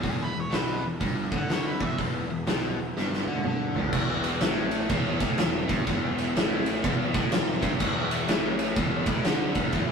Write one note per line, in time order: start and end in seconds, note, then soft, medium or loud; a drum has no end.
0.01 0.33 E1 medium
0.01 0.31 E2 loud
0.01 3.89 B3 medium
0.01 3.88 G#4 medium
0.01 0.22 G#4 medium
0.01 3.88 E5 medium
0.01 kick medium
0.01 open hi-hat medium
0.22 0.37 B4 medium
0.32 0.51 E1 medium
0.32 0.48 E2 medium
0.40 0.54 C#5 medium
0.50 0.82 B1 medium
0.50 0.82 B2 loud
0.50 snare loud
0.50 open hi-hat medium
0.54 0.84 B4 medium
0.82 1.00 E1 medium
0.82 0.98 E2 medium
1.00 1.30 G1 medium
1.00 1.31 G2 loud
1.00 kick loud
1.00 open hi-hat medium
1.31 1.48 D2 medium
1.31 1.49 D3 loud
1.31 kick loud
1.37 1.52 F#5 medium
1.48 1.78 D2 loud
1.48 1.80 D3 loud
1.48 snare loud
1.48 open hi-hat medium
1.53 1.67 C#5 medium
1.67 1.83 B4 medium
1.80 1.98 E1 medium
1.80 1.97 E2 loud
1.80 1.98 E5 medium
1.80 kick loud
1.98 2.27 E1 medium
1.98 2.29 E2 loud
1.98 kick medium
1.98 open hi-hat soft
2.27 2.45 E1 medium
2.27 2.44 E2 medium
2.46 2.75 B1 medium
2.46 2.77 B2 loud
2.46 snare loud
2.46 open hi-hat medium
2.78 2.95 E1 medium
2.78 2.93 E2 medium
2.96 3.25 G1 medium
2.96 3.27 G2 loud
2.96 snare medium
3.13 snare medium
3.27 3.43 D2 medium
3.27 3.45 D3 loud
3.36 high tom medium
3.44 3.73 D2 medium
3.44 3.75 D3 loud
3.44 mid tom medium
3.75 3.92 E1 loud
3.75 3.92 E2 medium
3.75 floor tom medium
3.84 floor tom medium
3.92 4.38 E1 medium
3.92 4.41 E2 loud
3.92 7.76 B3 medium
3.92 7.76 G#4 medium
3.92 7.76 E5 medium
3.92 kick loud
3.92 crash loud
4.24 ride medium
4.41 4.86 A1 medium
4.41 4.90 A2 loud
4.41 snare loud
4.41 ride loud
4.71 ride medium
4.89 5.18 E1 loud
4.89 5.20 E2 loud
4.89 kick loud
4.89 ride loud
5.20 5.37 A1 loud
5.20 5.38 A2 loud
5.20 kick loud
5.20 ride medium
5.38 5.67 E1 medium
5.38 5.63 E2 medium
5.38 snare loud
5.38 ride loud
5.68 5.85 G1 loud
5.68 5.86 G2 loud
5.68 kick loud
5.68 ride medium
5.86 6.32 E1 medium
5.86 6.35 E2 loud
5.86 kick medium
5.86 ride medium
6.18 ride medium
6.35 6.80 A1 medium
6.35 6.83 A2 loud
6.35 snare loud
6.35 ride loud
6.66 ride medium
6.84 7.13 E1 loud
6.84 7.13 E2 loud
6.84 kick loud
6.84 ride loud
7.14 7.31 A1 loud
7.14 7.31 A2 loud
7.14 kick loud
7.14 ride medium
7.32 7.61 E1 medium
7.32 7.57 E2 medium
7.32 snare loud
7.32 ride loud
7.62 7.79 G1 loud
7.62 7.79 G2 loud
7.62 kick loud
7.62 ride medium
7.80 8.26 E1 loud
7.80 8.28 E2 loud
7.80 9.92 G#4 medium
7.80 9.92 B4 medium
7.80 9.92 E5 medium
7.80 kick loud
7.80 crash medium
8.11 ride medium
8.28 8.74 A1 medium
8.28 8.76 A2 loud
8.28 snare loud
8.28 ride loud
8.59 ride medium
8.76 9.06 E1 medium
8.76 9.07 E2 loud
8.76 kick loud
8.76 ride loud
9.06 9.24 A1 loud
9.06 9.25 A2 loud
9.06 kick loud
9.06 ride medium
9.25 9.54 D2 loud
9.25 9.56 D3 loud
9.25 snare loud
9.25 ride loud
9.55 9.72 E1 loud
9.55 9.73 E2 loud
9.55 kick loud
9.55 ride medium
9.72 9.92 E1 medium
9.72 9.92 E2 loud
9.72 kick loud
9.72 ride medium